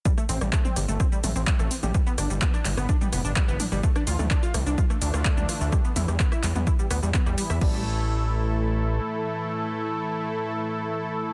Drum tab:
CC |----------------|----------------|----------------|----------------|
HH |--o---o---o---o-|--o---o---o---o-|--o---o---o---o-|--o---o---o---o-|
SH |xxxxxxxxxxxxxxxx|xxxxxxxxxxxxxxxx|xxxxxxxxxxxxxxxx|xxxxxxxxxxxxxxxx|
CP |----x-------x---|----x-x-----x---|----x-------x---|----x-x-----x---|
SD |-r-r--r-r--r-r--|r-r--r-r--r-r--r|-r--r-r--r-r--r-|r--r-r--r-r--r-r|
T2 |o----o----o----o|----o----o----o-|---o----o----o--|--o----o----o---|
BD |o---o---o---o---|o---o---o---o---|o---o---o---o---|o---o---o---o---|

CC |x---------------|----------------|
HH |----------------|----------------|
SH |----------------|----------------|
CP |----------------|----------------|
SD |----------------|----------------|
T2 |----------------|----------------|
BD |o---------------|----------------|